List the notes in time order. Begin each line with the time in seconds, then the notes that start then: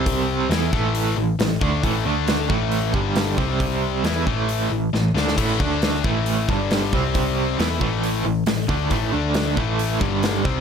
Already playing: C2 C3 G3 C4
0.06 kick, open hi-hat
0.49 E2 E3 B3 E4, snare, open hi-hat
0.72 A1 A2 E3 A3, kick
0.95 open hi-hat
1.17 A1 A2 E3
1.39 A1 A2 E3, snare, open hi-hat
1.61 D2 D3 A3 D4, kick
1.83 A1 A2 E3 A3, kick, open hi-hat
2.05 D2 D3 A3 D4
2.28 snare, open hi-hat
2.49 A1 A2 E3 A3, kick
2.72 open hi-hat
2.93 G1 G2 D3 G3, kick
3.16 snare, open hi-hat
3.38 C2 C3 G3 C4, kick
3.60 kick, open hi-hat
4.04 E2 E3 B3 E4, snare, open hi-hat
4.26 A1 A2 E3 A3, kick
4.49 open hi-hat
4.71 A1 A2 E3
4.93 A1 A2 E3, snare
5.15 D2 D3 A3 D4, snare
5.28 snare
5.36 A1 A2 E3 A3, kick, open hi-hat, crash
5.59 D2 D3 A3 D4, kick
5.82 snare, open hi-hat
5.94 snare
6.04 A1 A2 E3 A3, kick
6.26 open hi-hat
6.49 G1 G2 D3 G3, kick
6.71 snare, open hi-hat
6.93 C2 C3 G3 C4, kick
7.15 kick, open hi-hat
7.58 E2 E3 B3 E4, snare, open hi-hat
7.81 A1 A2 E3 A3, kick
8.03 open hi-hat
8.25 A1 A2 E3
8.46 A2 E3, snare, open hi-hat
8.68 D2 D3 A3 D4, kick
8.91 A1 A2 E3 A3, kick, open hi-hat
9.13 D2 D3 A3 D4
9.34 snare, open hi-hat
9.57 A1 A2 E3 A3, kick
9.79 open hi-hat
10.00 G1 G2 D3 G3, kick
10.23 snare, open hi-hat
10.44 C2 C3 G3 C4, kick